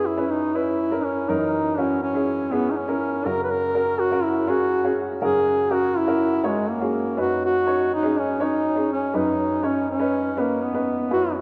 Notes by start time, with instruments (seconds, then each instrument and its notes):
Already playing: upright piano F#2 F#3 C#4 E4 G#4 B4
0.06 duduk E4
0.18 upright piano C#4 E4 B4
0.31 duduk D#4
0.55 upright piano C#4 E4 B4, duduk E4
0.92 upright piano C#4 E4 A#4
1.04 duduk C#4
1.29 upright piano F#2 E3 F#3 C#4 A#4, duduk D#4
1.78 upright piano C#4 E4 F#4, duduk C#4
2.02 duduk C#4
2.14 upright piano C#4 E4 G#4
2.51 duduk B3, upright piano C#4 E4 G#4
2.71 duduk D#4
2.77 duduk C#4
2.88 upright piano C#4 E4 A#4
3.25 upright piano F#2 C#3 C#4 F#4 A#4, duduk A#4
3.44 duduk B4
3.50 duduk A#4
3.74 upright piano C#4 F#4 A#4
4.00 duduk F#4
4.11 upright piano C#4 F#4 A#4
4.24 duduk E4
4.47 upright piano C#4 F#4 G#4, duduk F#4
4.84 upright piano C#4 F#4 G#4
5.22 upright piano F#2 C#3 C#4 F#4 A#4, duduk G#4
5.70 upright piano C#4 F#4 A#4, duduk F#4
5.98 duduk E4
6.07 upright piano C#4 F#4 A#4
6.44 duduk G#3, upright piano C#4 F#4 C#5
6.71 duduk A#3
6.81 upright piano C#4 F#4 G#4
7.17 upright piano F#2 F#3 C#4 D#4 B4, duduk F#4
7.45 duduk F#4
7.67 upright piano C#4 D#4 C#5
7.94 duduk D#4
8.03 upright piano C#4 D#4 G#4
8.19 duduk C#4
8.40 upright piano C#4 D#4 C#5, duduk D#4
8.76 upright piano C#4 D#4 G#4
8.93 duduk C#4
9.14 upright piano F#2 F#3 C#4 D#4 B4, duduk D#4
9.63 upright piano C#4 D#4 C#5, duduk C#4
9.90 duduk C#4
10.00 upright piano C#4 D#4 B4
10.37 duduk A#3, upright piano C#4 D#4 B4
10.64 duduk B3
10.74 upright piano C#4 D#4 B4
11.11 upright piano F#2 F#3 E4 F#4 B4, duduk F#4